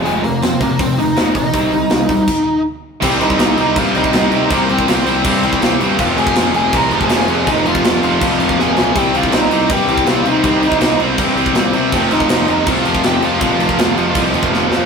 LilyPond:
<<
  \new Staff \with { instrumentName = "Lead electric guitar" } { \time 4/4 \key c \phrygian \tempo 4 = 162 <aes aes'>8 <bes bes'>8 <c' c''>8 <bes bes'>8 <c' c''>8 <ees' ees''>4 <ees' ees''>8~ | <ees' ees''>2. r4 | <c' c''>8 <ees' ees''>4 <ees' ees''>8 <f' f''>8 <ees' ees''>4. | <bes bes'>8 <c' c''>4 <c' c''>2 r8 |
<f' f''>8 <aes' aes''>4 <aes' aes''>8 <bes' bes''>8 <aes' aes''>4. | <ees' ees''>8 <f' f''>4 <f' f''>4. <aes' aes''>4 | <g' g''>8 <f' f''>8 <ees' ees''>4 <g' g''>4 <f' f''>8 <ees' ees''>8~ | <ees' ees''>4. r2 r8 |
<c' c''>8 <ees' ees''>4 <ees' ees''>8 <f' f''>4 <g' g''>8 <f' f''>8~ | <f' f''>2. r4 | }
  \new Staff \with { instrumentName = "Distorted electric guitar" } { \clef bass \time 4/4 \key c \phrygian r1 | r1 | <c g c'>8 <c g c'>8 <c g c'>8 <c g c'>8 <c g c'>8 <c g c'>8 <c g c'>8 <c g c'>8 | <c g c'>8 <c g c'>8 <c g c'>8 <c g c'>8 <c g c'>8 <c g c'>8 <c g c'>8 <c g c'>8 |
<f, c f>8 <f, c f>8 <f, c f>8 <f, c f>8 <f, c f>8 <f, c f>8 <f, c f>8 <f, c f>8 | <f, c f>8 <f, c f>8 <f, c f>8 <f, c f>8 <f, c f>8 <f, c f>8 <f, c f>8 <f, c f>8 | <c g c'>8 <c g c'>8 <c g c'>8 <c g c'>8 <c g c'>8 <c g c'>8 <c g c'>8 <c g c'>8 | <c g c'>8 <c g c'>8 <c g c'>8 <c g c'>8 <c g c'>8 <c g c'>8 <c g c'>8 <c g c'>8 |
<f, c f>8 <f, c f>8 <f, c f>8 <f, c f>8 <f, c f>8 <f, c f>8 <f, c f>8 <f, c f>8 | <f, c f>8 <f, c f>8 <f, c f>8 <f, c f>8 <f, c f>8 <f, c f>8 <f, c f>8 <f, c f>8 | }
  \new Staff \with { instrumentName = "Distorted electric guitar" } { \clef bass \time 4/4 \key c \phrygian <f, c f>8 <f, c>8 <f, c>8 <f, c>8 <f, c>8 <f, c>8 <f, c f>8 <f, c>8 | <c g c'>8 <c g>8 <c g>8 <c g>8 r2 | <c g c'>2 <c g c'>2 | <c g c'>2 <c g c'>2 |
<f, c f>2 <f, c f>2 | <f, c f>2 <f, c f>2 | <c g c'>2 <c g c'>2 | <c g c'>2 <c g c'>2 |
<f, c f>2 <f, c f>2 | <f, c f>2 <f, c f>2 | }
  \new Staff \with { instrumentName = "Distorted electric guitar" } { \clef bass \time 4/4 \key c \phrygian <f, c f>8 <f, c>8 <f, c>8 <f, c>8 <f, c>8 <f, c>8 <f, c f>8 <f, c>8 | <c g c'>8 <c g>8 <c g>8 <c g>8 r2 | <c g c'>2~ <c g c'>8 <c g c'>8 <c g c'>4 | <c g c'>2~ <c g c'>8 <c g c'>8 <c g c'>4 |
<f, c f>2~ <f, c f>8 <f, c f>8 <f, c f>4 | <f, c f>2~ <f, c f>8 <f, c f>8 <f, c f>4 | <c g c'>2~ <c g c'>8 <c g c'>8 <c g c'>4 | <c g c'>2~ <c g c'>8 <c g c'>8 <c g c'>4 |
<f, c f>2~ <f, c f>8 <f, c f>8 <f, c f>4 | <f, c f>2~ <f, c f>8 <f, c f>8 <f, c f>4 | }
  \new Staff \with { instrumentName = "Picked electric bass" } { \clef bass \time 4/4 \key c \phrygian f,,8 f,,8 f,,8 f,,8 f,,8 f,,8 f,,8 bes,,8 | c,8 c,8 c,8 c,8 r2 | c,8 c,8 c,8 c,8 g,8 c,8 c,8 c8 | c,8 c,8 c,8 c,8 g,8 c,8 c,8 g,8 |
f,,8 f,,8 f,,8 f,,8 c,8 f,,8 f,,8 f,8 | f,,8 f,,8 f,,8 f,,8 c,8 f,,8 f,,8 b,,8 | c,8 c,8 c,8 c,8 g,8 c,8 c,8 c8 | c,8 c,8 c,8 c,8 g,8 c,8 c,8 c8 |
f,,8 f,,8 f,,8 f,,8 c,8 f,,8 f,,8 f,8 | f,,8 f,,8 f,,8 f,,8 c,8 f,,8 f,,8 f,8 | }
  \new DrumStaff \with { instrumentName = "Drums" } \drummode { \time 4/4 hho8 hho8 <hho sn>8 <hho bd>8 <hho bd>8 hho8 <hho sn>8 <hho bd>8 | <hho bd>8 hho8 <hho sn>8 <hho bd>8 <cymc bd>4 r4 | <cymc bd>8 cymc16 bd16 <cymc sn>8 cymc8 <cymc bd>8 cymc16 bd16 <cymc sn>8 cymc8 | <cymc bd>8 cymc16 bd16 <cymc sn>8 cymc8 <cymc bd>8 cymc16 bd16 <cymc sn>8 cymc8 |
<cymc bd>8 cymc16 bd16 <cymc sn>8 cymc8 <cymc bd>8 cymc16 bd16 <cymc sn>8 cymc8 | <cymc bd>8 cymc16 bd16 <cymc sn>8 cymc8 <cymc bd>8 cymc16 bd16 sn8 sn8 | <cymc bd>8 cymc16 bd16 <cymc sn>8 cymc8 <cymc bd>8 cymc16 bd16 <cymc sn>8 cymc8 | <cymc bd>8 cymc16 bd16 <cymc sn>8 cymc8 <cymc bd>8 cymc16 bd16 <cymc sn>8 cymc8 |
<cymc bd>8 cymc16 bd16 <cymc sn>8 cymc8 <cymc bd>8 cymc16 bd16 <cymc sn>8 cymc8 | <cymc bd>8 cymc16 bd16 <cymc sn>8 cymc8 <cymc bd>8 cymc16 bd16 sn8 sn8 | }
>>